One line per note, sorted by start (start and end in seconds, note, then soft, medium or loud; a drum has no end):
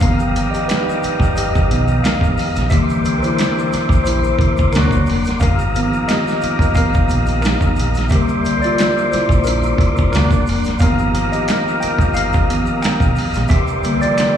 0.00 0.46 G1 medium
0.00 2.34 D#3 medium
0.00 1.70 D#3 medium
0.00 1.71 F3 soft
0.00 2.34 G3 medium
0.00 2.34 B3 medium
0.00 1.71 B3 medium
0.00 2.34 G4 medium
0.00 2.69 G4 medium
0.00 0.51 A#4 medium
0.00 0.55 F5 medium
0.00 2.69 F5 medium
0.00 2.69 A#5 medium
0.00 2.69 D#6 medium
0.00 kick loud
0.00 closed hi-hat medium
0.00 shaker medium
0.19 shaker soft
0.36 closed hi-hat medium
0.36 shaker soft
0.51 0.68 G4 medium
0.51 0.68 D#5 medium
0.51 closed hi-hat soft
0.51 shaker soft
0.68 1.33 D#4 medium
0.68 1.32 B4 medium
0.68 finger snap medium
0.68 snare medium
0.68 closed hi-hat medium
0.68 shaker medium
0.72 finger snap medium
0.89 shaker soft
1.03 muted fingered electric bass stroke medium
1.03 closed hi-hat medium
1.03 shaker soft
1.20 1.72 G1 loud
1.20 kick medium
1.20 shaker medium
1.36 2.01 G4 medium
1.36 2.06 D#5 medium
1.36 closed hi-hat medium
1.36 shaker medium
1.55 kick medium
1.55 shaker soft
1.71 2.00 B1 medium
1.71 2.01 D#3 soft
1.71 2.02 F3 soft
1.71 2.02 B3 medium
1.71 closed hi-hat medium
1.88 shaker soft
2.03 2.69 A#4 medium
2.03 2.73 F5 medium
2.03 finger snap medium
2.03 muted fingered electric bass stroke soft
2.03 snare loud
2.03 closed hi-hat medium
2.03 shaker medium
2.07 finger snap medium
2.21 2.35 G#1 loud
2.21 kick medium
2.21 shaker soft
2.38 open hi-hat medium
2.38 shaker soft
2.56 2.72 A#1 medium
2.56 snare soft
2.56 closed hi-hat soft
2.56 shaker medium
2.70 3.16 C2 medium
2.70 4.70 D3 medium
2.70 4.37 E3 medium
2.70 4.70 E3 medium
2.70 4.37 G3 medium
2.70 4.70 A#3 medium
2.70 4.37 D4 medium
2.70 4.37 G4 medium
2.70 3.21 G4 medium
2.70 5.38 A#4 medium
2.70 3.24 E5 loud
2.70 4.72 E5 medium
2.70 5.39 C6 medium
2.70 4.72 D6 medium
2.70 kick loud
2.70 closed hi-hat medium
2.70 shaker medium
2.89 shaker soft
3.05 closed hi-hat medium
3.05 shaker soft
3.23 4.03 E4 medium
3.23 4.03 C5 medium
3.23 closed hi-hat soft
3.23 shaker soft
3.39 finger snap medium
3.39 snare loud
3.39 closed hi-hat medium
3.39 shaker medium
3.41 finger snap medium
3.59 shaker soft
3.72 muted fingered electric bass stroke medium
3.72 snare soft
3.72 closed hi-hat medium
3.72 shaker soft
3.89 4.32 A#1 medium
3.89 kick medium
3.89 shaker medium
4.04 4.70 E4 medium
4.04 4.75 C5 medium
4.04 closed hi-hat medium
4.04 shaker medium
4.24 shaker medium
4.39 4.68 C2 medium
4.39 kick medium
4.39 closed hi-hat medium
4.57 kick medium
4.57 shaker soft
4.73 5.03 D2 medium
4.73 5.07 C3 medium
4.73 5.38 C3 medium
4.73 5.07 F#3 medium
4.73 5.38 F#3 soft
4.73 5.07 A#3 medium
4.73 5.39 A#3 medium
4.73 5.38 D4 medium
4.73 5.07 F#4 medium
4.73 5.37 A#4 medium
4.73 5.40 F#5 medium
4.73 5.40 D6 medium
4.73 finger snap medium
4.73 snare loud
4.73 closed hi-hat medium
4.73 shaker medium
4.77 finger snap medium
4.91 kick medium
4.91 shaker soft
5.06 5.37 F1 medium
5.06 open hi-hat medium
5.06 shaker medium
5.25 snare soft
5.25 closed hi-hat soft
5.25 shaker medium
5.40 5.86 G1 loud
5.40 7.73 F3 medium
5.40 7.73 A#3 medium
5.40 7.73 D#4 medium
5.40 8.08 G4 medium
5.40 7.73 A#4 medium
5.40 6.05 A#4 medium
5.40 6.04 F5 medium
5.40 8.08 F5 medium
5.40 8.08 A#5 medium
5.40 8.08 D#6 medium
5.40 kick loud
5.40 closed hi-hat medium
5.40 shaker medium
5.59 shaker soft
5.75 6.72 D#3 medium
5.75 6.72 F3 soft
5.75 6.73 B3 medium
5.75 closed hi-hat medium
5.75 shaker soft
5.93 shaker soft
6.08 6.73 G4 medium
6.08 6.78 D#5 medium
6.08 finger snap medium
6.08 snare medium
6.08 closed hi-hat medium
6.08 shaker medium
6.11 finger snap medium
6.27 snare soft
6.27 shaker soft
6.41 muted fingered electric bass stroke soft
6.41 closed hi-hat medium
6.41 shaker soft
6.59 7.02 G1 medium
6.59 kick medium
6.59 closed hi-hat soft
6.59 shaker medium
6.74 7.06 D#3 soft
6.74 7.07 F3 soft
6.74 7.07 B3 soft
6.74 7.40 A#4 medium
6.74 7.45 F5 medium
6.74 kick loud
6.74 closed hi-hat medium
6.74 shaker medium
6.94 kick medium
6.94 shaker soft
7.09 7.54 A#1 medium
7.09 closed hi-hat medium
7.09 shaker medium
7.26 closed hi-hat soft
7.26 shaker soft
7.42 8.07 D#4 medium
7.42 8.12 A#4 medium
7.42 finger snap soft
7.42 closed hi-hat medium
7.42 shaker medium
7.46 finger snap medium
7.46 snare loud
7.61 7.75 G1 medium
7.61 kick loud
7.61 shaker soft
7.76 8.11 A#1 medium
7.76 closed hi-hat medium
7.76 shaker soft
7.94 closed hi-hat soft
7.94 shaker medium
7.99 snare soft
8.09 8.55 C2 loud
8.09 10.09 D3 medium
8.09 9.76 G3 medium
8.09 10.09 G3 soft
8.09 10.10 A#3 medium
8.09 9.76 C4 medium
8.09 9.76 E4 medium
8.09 8.60 G4 medium
8.09 10.78 A#4 medium
8.09 9.76 C5 medium
8.09 8.64 E5 medium
8.09 10.11 E5 medium
8.09 10.78 C6 medium
8.09 10.77 D6 medium
8.09 kick loud
8.09 closed hi-hat medium
8.09 shaker medium
8.28 shaker soft
8.45 closed hi-hat medium
8.45 shaker soft
8.62 9.10 F4 medium
8.62 9.08 D5 medium
8.62 closed hi-hat soft
8.62 shaker soft
8.78 finger snap medium
8.78 snare loud
8.78 closed hi-hat medium
8.78 shaker medium
8.81 finger snap medium
8.98 shaker soft
9.11 9.44 E4 medium
9.11 9.43 C5 medium
9.11 muted fingered electric bass stroke soft
9.11 snare soft
9.11 closed hi-hat medium
9.11 shaker soft
9.29 9.71 A#1 medium
9.29 kick medium
9.29 shaker soft
9.44 10.10 D4 medium
9.44 10.11 A#4 medium
9.44 closed hi-hat medium
9.44 shaker medium
9.63 shaker medium
9.78 10.15 C2 medium
9.78 kick medium
9.78 closed hi-hat medium
9.96 kick medium
9.96 shaker soft
10.12 10.42 D2 medium
10.12 10.77 C3 medium
10.12 10.78 F#3 soft
10.12 10.46 A#3 medium
10.12 10.78 A#3 medium
10.12 10.46 D4 medium
10.12 10.77 D4 medium
10.12 10.46 F#4 medium
10.12 10.81 A#4 medium
10.12 10.46 D5 medium
10.12 10.80 F#5 medium
10.12 finger snap medium
10.12 snare loud
10.12 closed hi-hat medium
10.12 shaker medium
10.16 finger snap medium
10.31 kick loud
10.31 shaker soft
10.46 10.76 F1 medium
10.46 open hi-hat medium
10.46 shaker medium
10.64 snare soft
10.64 closed hi-hat soft
10.64 shaker medium
10.79 11.25 G1 loud
10.79 12.48 D#3 medium
10.79 13.13 F3 medium
10.79 12.49 F3 medium
10.79 13.12 A#3 medium
10.79 12.49 B3 medium
10.79 13.12 D#4 medium
10.79 13.48 G4 medium
10.79 13.12 A#4 medium
10.79 11.30 A#4 medium
10.79 11.28 F5 loud
10.79 13.47 F5 medium
10.79 13.47 A#5 medium
10.79 13.48 D#6 medium
10.79 kick loud
10.79 closed hi-hat medium
10.79 shaker medium
10.99 shaker soft
11.15 closed hi-hat medium
11.15 shaker soft
11.32 11.79 G4 medium
11.32 11.78 D#5 medium
11.32 closed hi-hat soft
11.32 shaker soft
11.48 finger snap medium
11.48 snare loud
11.48 closed hi-hat medium
11.48 shaker medium
11.51 finger snap medium
11.68 shaker soft
11.80 12.14 A#4 medium
11.80 12.16 G5 loud
11.80 muted fingered electric bass stroke soft
11.80 closed hi-hat medium
11.80 shaker medium
11.98 12.57 G1 loud
11.98 kick medium
11.98 shaker medium
12.14 12.80 A#4 medium
12.14 12.84 F5 loud
12.14 closed hi-hat medium
12.14 shaker medium
12.33 kick medium
12.33 shaker soft
12.49 12.80 D#3 soft
12.49 12.80 F3 soft
12.49 12.80 B3 medium
12.49 closed hi-hat medium
12.66 shaker soft
12.82 13.47 A#4 medium
12.82 13.46 G5 medium
12.82 finger snap medium
12.82 muted fingered electric bass stroke soft
12.82 snare loud
12.82 closed hi-hat medium
12.82 shaker medium
12.86 finger snap loud
13.00 13.14 B1 loud
13.00 kick medium
13.00 shaker soft
13.16 open hi-hat medium
13.16 shaker soft
13.34 13.49 A#1 loud
13.34 snare soft
13.34 closed hi-hat soft
13.34 shaker medium
13.48 13.94 C2 loud
13.48 14.37 E3 medium
13.48 14.37 G3 medium
13.48 14.37 D4 medium
13.48 14.37 G4 medium
13.48 13.99 G4 medium
13.48 14.37 A#4 medium
13.48 14.03 E5 loud
13.48 14.37 E5 medium
13.48 14.37 C6 medium
13.48 14.37 D6 medium
13.48 kick loud
13.48 closed hi-hat medium
13.48 shaker medium
13.67 shaker soft
13.83 14.37 D3 medium
13.83 14.37 G3 medium
13.83 14.37 A#3 medium
13.83 closed hi-hat medium
13.83 shaker soft
14.01 14.37 F3 medium
14.01 14.37 D5 loud
14.01 closed hi-hat soft
14.01 shaker soft
14.18 finger snap medium
14.18 snare medium
14.18 closed hi-hat medium
14.18 shaker medium
14.21 finger snap medium